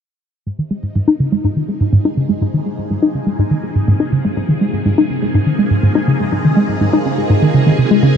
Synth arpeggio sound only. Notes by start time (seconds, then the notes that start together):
0.47 G#2
0.59 D#3
0.71 G#3
0.83 G#2
0.96 G#2
1.08 D#4
1.20 C#3
1.32 G#3
1.44 G#2
1.56 D#3
1.68 G#3
1.81 G#2
1.93 G#2
2.05 D#4
2.17 C#3
2.29 G#3
2.41 G#2
2.54 D#3
2.66 G#3
2.79 G#2
2.90 G#2
3.03 D#4
3.15 C#3
3.27 G#3
3.39 G#2
3.51 D#3
3.63 G#3
3.76 G#2
3.88 G#2
4.00 D#4
4.12 C#3
4.25 G#3
4.37 G#2
4.49 D#3
4.61 G#3
4.73 G#2
4.86 G#2
4.98 D#4
5.10 C#3
5.22 G#3
5.35 G#2
5.46 D#3
5.59 G#3
5.71 G#2
5.83 G#2
5.95 D#4
6.08 C#3
6.20 G#3
6.32 G#2
6.45 D#3
6.57 G#3
6.69 G#2
6.81 G#2
6.93 D#4
7.06 C#3
7.18 G#3
7.30 G#2
7.42 D#3
7.54 C#3
7.67 D#3
7.79 C3
7.91 G#3
8.03 C#3